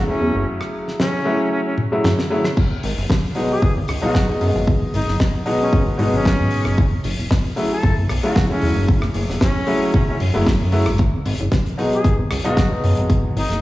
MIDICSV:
0, 0, Header, 1, 5, 480
1, 0, Start_track
1, 0, Tempo, 526316
1, 424, Time_signature, 4, 2, 24, 8
1, 12415, End_track
2, 0, Start_track
2, 0, Title_t, "Flute"
2, 0, Program_c, 0, 73
2, 72, Note_on_c, 0, 61, 89
2, 424, Note_off_c, 0, 61, 0
2, 902, Note_on_c, 0, 61, 90
2, 1361, Note_off_c, 0, 61, 0
2, 1383, Note_on_c, 0, 61, 82
2, 1466, Note_off_c, 0, 61, 0
2, 1513, Note_on_c, 0, 61, 69
2, 1584, Note_off_c, 0, 61, 0
2, 3196, Note_on_c, 0, 68, 85
2, 3395, Note_off_c, 0, 68, 0
2, 3672, Note_on_c, 0, 66, 86
2, 3873, Note_off_c, 0, 66, 0
2, 4507, Note_on_c, 0, 63, 89
2, 4712, Note_off_c, 0, 63, 0
2, 5111, Note_on_c, 0, 61, 86
2, 5313, Note_off_c, 0, 61, 0
2, 5596, Note_on_c, 0, 61, 91
2, 6237, Note_off_c, 0, 61, 0
2, 7033, Note_on_c, 0, 69, 91
2, 7234, Note_off_c, 0, 69, 0
2, 7514, Note_on_c, 0, 66, 84
2, 7714, Note_off_c, 0, 66, 0
2, 7755, Note_on_c, 0, 61, 87
2, 8105, Note_off_c, 0, 61, 0
2, 8587, Note_on_c, 0, 61, 96
2, 9044, Note_off_c, 0, 61, 0
2, 9065, Note_on_c, 0, 61, 85
2, 9147, Note_off_c, 0, 61, 0
2, 9198, Note_on_c, 0, 61, 72
2, 9267, Note_off_c, 0, 61, 0
2, 10881, Note_on_c, 0, 68, 89
2, 11078, Note_off_c, 0, 68, 0
2, 11357, Note_on_c, 0, 66, 87
2, 11556, Note_off_c, 0, 66, 0
2, 12188, Note_on_c, 0, 63, 87
2, 12392, Note_off_c, 0, 63, 0
2, 12415, End_track
3, 0, Start_track
3, 0, Title_t, "Grand piano"
3, 0, Program_c, 1, 0
3, 60, Note_on_c, 1, 49, 69
3, 66, Note_on_c, 1, 54, 65
3, 71, Note_on_c, 1, 57, 63
3, 78, Note_on_c, 1, 64, 78
3, 1111, Note_off_c, 1, 49, 0
3, 1114, Note_off_c, 1, 54, 0
3, 1116, Note_off_c, 1, 57, 0
3, 1120, Note_off_c, 1, 64, 0
3, 1136, Note_on_c, 1, 49, 84
3, 1141, Note_on_c, 1, 54, 79
3, 1143, Note_on_c, 1, 57, 80
3, 1146, Note_on_c, 1, 64, 94
3, 1593, Note_off_c, 1, 49, 0
3, 1596, Note_off_c, 1, 54, 0
3, 1597, Note_off_c, 1, 57, 0
3, 1598, Note_off_c, 1, 64, 0
3, 1748, Note_on_c, 1, 49, 83
3, 1751, Note_on_c, 1, 54, 76
3, 1754, Note_on_c, 1, 57, 79
3, 1757, Note_on_c, 1, 64, 92
3, 1896, Note_off_c, 1, 49, 0
3, 1898, Note_off_c, 1, 54, 0
3, 1899, Note_off_c, 1, 57, 0
3, 1901, Note_off_c, 1, 64, 0
3, 2100, Note_on_c, 1, 49, 82
3, 2102, Note_on_c, 1, 54, 75
3, 2106, Note_on_c, 1, 57, 78
3, 2107, Note_on_c, 1, 64, 92
3, 2204, Note_off_c, 1, 49, 0
3, 2205, Note_off_c, 1, 54, 0
3, 2207, Note_off_c, 1, 57, 0
3, 2208, Note_off_c, 1, 64, 0
3, 3056, Note_on_c, 1, 47, 73
3, 3060, Note_on_c, 1, 54, 66
3, 3063, Note_on_c, 1, 56, 69
3, 3066, Note_on_c, 1, 63, 80
3, 3219, Note_off_c, 1, 47, 0
3, 3221, Note_off_c, 1, 54, 0
3, 3222, Note_off_c, 1, 56, 0
3, 3224, Note_off_c, 1, 63, 0
3, 3662, Note_on_c, 1, 47, 83
3, 3668, Note_on_c, 1, 54, 78
3, 3670, Note_on_c, 1, 56, 78
3, 3671, Note_on_c, 1, 63, 93
3, 3877, Note_off_c, 1, 47, 0
3, 3880, Note_off_c, 1, 54, 0
3, 3881, Note_off_c, 1, 56, 0
3, 3881, Note_off_c, 1, 63, 0
3, 3897, Note_on_c, 1, 47, 69
3, 3906, Note_on_c, 1, 54, 62
3, 3911, Note_on_c, 1, 56, 63
3, 3916, Note_on_c, 1, 63, 75
3, 4950, Note_off_c, 1, 47, 0
3, 4954, Note_off_c, 1, 54, 0
3, 4957, Note_off_c, 1, 56, 0
3, 4959, Note_off_c, 1, 63, 0
3, 4975, Note_on_c, 1, 47, 86
3, 4977, Note_on_c, 1, 54, 80
3, 4981, Note_on_c, 1, 56, 79
3, 4984, Note_on_c, 1, 63, 95
3, 5433, Note_off_c, 1, 47, 0
3, 5434, Note_off_c, 1, 54, 0
3, 5436, Note_off_c, 1, 56, 0
3, 5438, Note_off_c, 1, 63, 0
3, 5449, Note_on_c, 1, 47, 84
3, 5455, Note_on_c, 1, 54, 79
3, 5461, Note_on_c, 1, 56, 77
3, 5466, Note_on_c, 1, 63, 93
3, 6163, Note_off_c, 1, 47, 0
3, 6166, Note_off_c, 1, 54, 0
3, 6169, Note_off_c, 1, 56, 0
3, 6172, Note_off_c, 1, 63, 0
3, 6893, Note_on_c, 1, 49, 75
3, 6897, Note_on_c, 1, 54, 71
3, 6901, Note_on_c, 1, 57, 69
3, 6903, Note_on_c, 1, 64, 84
3, 7057, Note_off_c, 1, 49, 0
3, 7059, Note_off_c, 1, 54, 0
3, 7061, Note_off_c, 1, 57, 0
3, 7062, Note_off_c, 1, 64, 0
3, 7507, Note_on_c, 1, 49, 85
3, 7510, Note_on_c, 1, 54, 80
3, 7513, Note_on_c, 1, 57, 81
3, 7516, Note_on_c, 1, 64, 93
3, 7719, Note_off_c, 1, 49, 0
3, 7721, Note_off_c, 1, 54, 0
3, 7722, Note_off_c, 1, 57, 0
3, 7724, Note_off_c, 1, 64, 0
3, 7740, Note_on_c, 1, 49, 70
3, 7745, Note_on_c, 1, 54, 66
3, 7752, Note_on_c, 1, 57, 64
3, 7758, Note_on_c, 1, 64, 77
3, 8791, Note_off_c, 1, 49, 0
3, 8794, Note_off_c, 1, 54, 0
3, 8797, Note_off_c, 1, 57, 0
3, 8800, Note_off_c, 1, 64, 0
3, 8816, Note_on_c, 1, 49, 88
3, 8819, Note_on_c, 1, 54, 81
3, 8821, Note_on_c, 1, 57, 80
3, 8823, Note_on_c, 1, 64, 93
3, 9273, Note_off_c, 1, 49, 0
3, 9275, Note_off_c, 1, 54, 0
3, 9276, Note_off_c, 1, 57, 0
3, 9277, Note_off_c, 1, 64, 0
3, 9425, Note_on_c, 1, 49, 86
3, 9428, Note_on_c, 1, 54, 79
3, 9433, Note_on_c, 1, 57, 77
3, 9436, Note_on_c, 1, 64, 94
3, 9575, Note_off_c, 1, 49, 0
3, 9576, Note_off_c, 1, 54, 0
3, 9578, Note_off_c, 1, 57, 0
3, 9580, Note_off_c, 1, 64, 0
3, 9777, Note_on_c, 1, 49, 86
3, 9779, Note_on_c, 1, 54, 78
3, 9781, Note_on_c, 1, 57, 77
3, 9785, Note_on_c, 1, 64, 95
3, 9883, Note_off_c, 1, 49, 0
3, 9884, Note_off_c, 1, 54, 0
3, 9885, Note_off_c, 1, 57, 0
3, 9887, Note_off_c, 1, 64, 0
3, 10738, Note_on_c, 1, 47, 76
3, 10740, Note_on_c, 1, 54, 70
3, 10745, Note_on_c, 1, 56, 71
3, 10746, Note_on_c, 1, 63, 85
3, 10900, Note_off_c, 1, 47, 0
3, 10901, Note_off_c, 1, 54, 0
3, 10903, Note_off_c, 1, 56, 0
3, 10904, Note_off_c, 1, 63, 0
3, 11347, Note_on_c, 1, 47, 86
3, 11349, Note_on_c, 1, 54, 77
3, 11352, Note_on_c, 1, 56, 78
3, 11356, Note_on_c, 1, 63, 96
3, 11559, Note_off_c, 1, 47, 0
3, 11560, Note_off_c, 1, 54, 0
3, 11562, Note_off_c, 1, 56, 0
3, 11564, Note_off_c, 1, 63, 0
3, 11582, Note_on_c, 1, 47, 74
3, 11588, Note_on_c, 1, 54, 65
3, 11595, Note_on_c, 1, 56, 64
3, 11600, Note_on_c, 1, 63, 77
3, 12415, Note_off_c, 1, 47, 0
3, 12415, Note_off_c, 1, 54, 0
3, 12415, Note_off_c, 1, 56, 0
3, 12415, Note_off_c, 1, 63, 0
3, 12415, End_track
4, 0, Start_track
4, 0, Title_t, "Analog synth bass"
4, 0, Program_c, 2, 38
4, 189, Note_on_c, 2, 40, 81
4, 278, Note_off_c, 2, 40, 0
4, 314, Note_on_c, 2, 30, 93
4, 425, Note_off_c, 2, 30, 0
4, 2588, Note_on_c, 2, 32, 97
4, 2678, Note_off_c, 2, 32, 0
4, 2713, Note_on_c, 2, 30, 89
4, 2792, Note_off_c, 2, 30, 0
4, 3305, Note_on_c, 2, 32, 74
4, 3397, Note_off_c, 2, 32, 0
4, 3434, Note_on_c, 2, 32, 84
4, 3513, Note_off_c, 2, 32, 0
4, 3545, Note_on_c, 2, 37, 83
4, 3636, Note_off_c, 2, 37, 0
4, 4022, Note_on_c, 2, 42, 85
4, 4115, Note_off_c, 2, 42, 0
4, 4153, Note_on_c, 2, 32, 93
4, 4453, Note_off_c, 2, 32, 0
4, 4503, Note_on_c, 2, 32, 96
4, 4596, Note_off_c, 2, 32, 0
4, 4633, Note_on_c, 2, 30, 85
4, 4712, Note_off_c, 2, 30, 0
4, 5224, Note_on_c, 2, 37, 95
4, 5316, Note_off_c, 2, 37, 0
4, 5351, Note_on_c, 2, 32, 82
4, 5431, Note_off_c, 2, 32, 0
4, 5460, Note_on_c, 2, 44, 80
4, 5554, Note_off_c, 2, 44, 0
4, 5589, Note_on_c, 2, 32, 80
4, 5833, Note_on_c, 2, 44, 85
4, 5846, Note_off_c, 2, 32, 0
4, 6072, Note_on_c, 2, 30, 81
4, 6085, Note_off_c, 2, 44, 0
4, 6373, Note_off_c, 2, 30, 0
4, 6426, Note_on_c, 2, 30, 95
4, 6517, Note_off_c, 2, 30, 0
4, 6556, Note_on_c, 2, 28, 86
4, 6634, Note_off_c, 2, 28, 0
4, 7146, Note_on_c, 2, 30, 73
4, 7237, Note_off_c, 2, 30, 0
4, 7277, Note_on_c, 2, 30, 86
4, 7355, Note_off_c, 2, 30, 0
4, 7391, Note_on_c, 2, 35, 86
4, 7480, Note_off_c, 2, 35, 0
4, 7867, Note_on_c, 2, 40, 81
4, 7958, Note_off_c, 2, 40, 0
4, 7993, Note_on_c, 2, 30, 97
4, 8293, Note_off_c, 2, 30, 0
4, 8343, Note_on_c, 2, 30, 97
4, 8436, Note_off_c, 2, 30, 0
4, 8474, Note_on_c, 2, 28, 86
4, 8553, Note_off_c, 2, 28, 0
4, 9066, Note_on_c, 2, 35, 92
4, 9157, Note_off_c, 2, 35, 0
4, 9195, Note_on_c, 2, 30, 81
4, 9273, Note_off_c, 2, 30, 0
4, 9309, Note_on_c, 2, 42, 82
4, 9398, Note_off_c, 2, 42, 0
4, 9437, Note_on_c, 2, 30, 77
4, 9674, Note_on_c, 2, 42, 87
4, 9687, Note_off_c, 2, 30, 0
4, 9912, Note_on_c, 2, 32, 83
4, 9926, Note_off_c, 2, 42, 0
4, 10213, Note_off_c, 2, 32, 0
4, 10263, Note_on_c, 2, 32, 97
4, 10356, Note_off_c, 2, 32, 0
4, 10394, Note_on_c, 2, 30, 87
4, 10473, Note_off_c, 2, 30, 0
4, 10986, Note_on_c, 2, 32, 76
4, 11077, Note_off_c, 2, 32, 0
4, 11115, Note_on_c, 2, 32, 82
4, 11194, Note_off_c, 2, 32, 0
4, 11227, Note_on_c, 2, 37, 84
4, 11318, Note_off_c, 2, 37, 0
4, 11708, Note_on_c, 2, 42, 83
4, 11798, Note_off_c, 2, 42, 0
4, 11837, Note_on_c, 2, 32, 99
4, 12135, Note_off_c, 2, 32, 0
4, 12188, Note_on_c, 2, 32, 100
4, 12278, Note_off_c, 2, 32, 0
4, 12312, Note_on_c, 2, 30, 87
4, 12392, Note_off_c, 2, 30, 0
4, 12415, End_track
5, 0, Start_track
5, 0, Title_t, "Drums"
5, 554, Note_on_c, 9, 37, 69
5, 645, Note_off_c, 9, 37, 0
5, 801, Note_on_c, 9, 38, 34
5, 893, Note_off_c, 9, 38, 0
5, 909, Note_on_c, 9, 38, 105
5, 1001, Note_off_c, 9, 38, 0
5, 1620, Note_on_c, 9, 48, 57
5, 1711, Note_off_c, 9, 48, 0
5, 1864, Note_on_c, 9, 47, 77
5, 1870, Note_on_c, 9, 38, 115
5, 1955, Note_off_c, 9, 47, 0
5, 1961, Note_off_c, 9, 38, 0
5, 1995, Note_on_c, 9, 38, 63
5, 2086, Note_off_c, 9, 38, 0
5, 2230, Note_on_c, 9, 38, 73
5, 2236, Note_on_c, 9, 37, 69
5, 2321, Note_off_c, 9, 38, 0
5, 2327, Note_off_c, 9, 37, 0
5, 2342, Note_on_c, 9, 49, 74
5, 2345, Note_on_c, 9, 36, 112
5, 2433, Note_off_c, 9, 49, 0
5, 2436, Note_off_c, 9, 36, 0
5, 2584, Note_on_c, 9, 46, 105
5, 2675, Note_off_c, 9, 46, 0
5, 2824, Note_on_c, 9, 36, 105
5, 2832, Note_on_c, 9, 38, 111
5, 2915, Note_off_c, 9, 36, 0
5, 2923, Note_off_c, 9, 38, 0
5, 3053, Note_on_c, 9, 46, 93
5, 3144, Note_off_c, 9, 46, 0
5, 3304, Note_on_c, 9, 36, 111
5, 3395, Note_off_c, 9, 36, 0
5, 3538, Note_on_c, 9, 46, 100
5, 3547, Note_on_c, 9, 37, 73
5, 3629, Note_off_c, 9, 46, 0
5, 3638, Note_off_c, 9, 37, 0
5, 3783, Note_on_c, 9, 36, 108
5, 3783, Note_on_c, 9, 38, 103
5, 3874, Note_off_c, 9, 38, 0
5, 3875, Note_off_c, 9, 36, 0
5, 4021, Note_on_c, 9, 46, 83
5, 4112, Note_off_c, 9, 46, 0
5, 4263, Note_on_c, 9, 36, 117
5, 4354, Note_off_c, 9, 36, 0
5, 4504, Note_on_c, 9, 46, 99
5, 4595, Note_off_c, 9, 46, 0
5, 4632, Note_on_c, 9, 38, 34
5, 4724, Note_off_c, 9, 38, 0
5, 4742, Note_on_c, 9, 38, 111
5, 4743, Note_on_c, 9, 36, 112
5, 4834, Note_off_c, 9, 36, 0
5, 4834, Note_off_c, 9, 38, 0
5, 4978, Note_on_c, 9, 46, 89
5, 5069, Note_off_c, 9, 46, 0
5, 5223, Note_on_c, 9, 36, 113
5, 5314, Note_off_c, 9, 36, 0
5, 5461, Note_on_c, 9, 46, 104
5, 5552, Note_off_c, 9, 46, 0
5, 5703, Note_on_c, 9, 36, 114
5, 5710, Note_on_c, 9, 38, 110
5, 5795, Note_off_c, 9, 36, 0
5, 5801, Note_off_c, 9, 38, 0
5, 5934, Note_on_c, 9, 46, 98
5, 6025, Note_off_c, 9, 46, 0
5, 6066, Note_on_c, 9, 37, 72
5, 6157, Note_off_c, 9, 37, 0
5, 6184, Note_on_c, 9, 36, 118
5, 6275, Note_off_c, 9, 36, 0
5, 6420, Note_on_c, 9, 46, 104
5, 6511, Note_off_c, 9, 46, 0
5, 6664, Note_on_c, 9, 36, 116
5, 6664, Note_on_c, 9, 38, 99
5, 6755, Note_off_c, 9, 36, 0
5, 6755, Note_off_c, 9, 38, 0
5, 6903, Note_on_c, 9, 46, 97
5, 6994, Note_off_c, 9, 46, 0
5, 7144, Note_on_c, 9, 36, 121
5, 7235, Note_off_c, 9, 36, 0
5, 7382, Note_on_c, 9, 37, 74
5, 7386, Note_on_c, 9, 46, 107
5, 7473, Note_off_c, 9, 37, 0
5, 7478, Note_off_c, 9, 46, 0
5, 7623, Note_on_c, 9, 36, 117
5, 7624, Note_on_c, 9, 38, 123
5, 7714, Note_off_c, 9, 36, 0
5, 7715, Note_off_c, 9, 38, 0
5, 7857, Note_on_c, 9, 46, 96
5, 7949, Note_off_c, 9, 46, 0
5, 8103, Note_on_c, 9, 36, 119
5, 8194, Note_off_c, 9, 36, 0
5, 8226, Note_on_c, 9, 37, 75
5, 8317, Note_off_c, 9, 37, 0
5, 8338, Note_on_c, 9, 46, 111
5, 8429, Note_off_c, 9, 46, 0
5, 8478, Note_on_c, 9, 38, 35
5, 8569, Note_off_c, 9, 38, 0
5, 8582, Note_on_c, 9, 38, 112
5, 8584, Note_on_c, 9, 36, 117
5, 8673, Note_off_c, 9, 38, 0
5, 8675, Note_off_c, 9, 36, 0
5, 8816, Note_on_c, 9, 46, 92
5, 8907, Note_off_c, 9, 46, 0
5, 9064, Note_on_c, 9, 36, 117
5, 9156, Note_off_c, 9, 36, 0
5, 9304, Note_on_c, 9, 46, 120
5, 9395, Note_off_c, 9, 46, 0
5, 9544, Note_on_c, 9, 36, 113
5, 9549, Note_on_c, 9, 38, 113
5, 9636, Note_off_c, 9, 36, 0
5, 9640, Note_off_c, 9, 38, 0
5, 9777, Note_on_c, 9, 46, 88
5, 9868, Note_off_c, 9, 46, 0
5, 9905, Note_on_c, 9, 37, 84
5, 9996, Note_off_c, 9, 37, 0
5, 10016, Note_on_c, 9, 42, 83
5, 10024, Note_on_c, 9, 36, 109
5, 10107, Note_off_c, 9, 42, 0
5, 10115, Note_off_c, 9, 36, 0
5, 10265, Note_on_c, 9, 46, 114
5, 10356, Note_off_c, 9, 46, 0
5, 10392, Note_on_c, 9, 42, 61
5, 10484, Note_off_c, 9, 42, 0
5, 10503, Note_on_c, 9, 42, 81
5, 10504, Note_on_c, 9, 36, 111
5, 10504, Note_on_c, 9, 38, 99
5, 10594, Note_off_c, 9, 42, 0
5, 10595, Note_off_c, 9, 36, 0
5, 10595, Note_off_c, 9, 38, 0
5, 10636, Note_on_c, 9, 42, 50
5, 10727, Note_off_c, 9, 42, 0
5, 10748, Note_on_c, 9, 46, 88
5, 10839, Note_off_c, 9, 46, 0
5, 10880, Note_on_c, 9, 42, 62
5, 10971, Note_off_c, 9, 42, 0
5, 10984, Note_on_c, 9, 36, 114
5, 10990, Note_on_c, 9, 42, 82
5, 11075, Note_off_c, 9, 36, 0
5, 11081, Note_off_c, 9, 42, 0
5, 11223, Note_on_c, 9, 37, 85
5, 11228, Note_on_c, 9, 46, 105
5, 11315, Note_off_c, 9, 37, 0
5, 11319, Note_off_c, 9, 46, 0
5, 11354, Note_on_c, 9, 42, 61
5, 11445, Note_off_c, 9, 42, 0
5, 11464, Note_on_c, 9, 36, 112
5, 11465, Note_on_c, 9, 38, 98
5, 11466, Note_on_c, 9, 42, 90
5, 11555, Note_off_c, 9, 36, 0
5, 11556, Note_off_c, 9, 38, 0
5, 11557, Note_off_c, 9, 42, 0
5, 11707, Note_on_c, 9, 46, 98
5, 11798, Note_off_c, 9, 46, 0
5, 11831, Note_on_c, 9, 42, 66
5, 11922, Note_off_c, 9, 42, 0
5, 11944, Note_on_c, 9, 36, 107
5, 11945, Note_on_c, 9, 42, 75
5, 12035, Note_off_c, 9, 36, 0
5, 12036, Note_off_c, 9, 42, 0
5, 12191, Note_on_c, 9, 46, 103
5, 12282, Note_off_c, 9, 46, 0
5, 12315, Note_on_c, 9, 42, 63
5, 12319, Note_on_c, 9, 38, 33
5, 12406, Note_off_c, 9, 42, 0
5, 12410, Note_off_c, 9, 38, 0
5, 12415, End_track
0, 0, End_of_file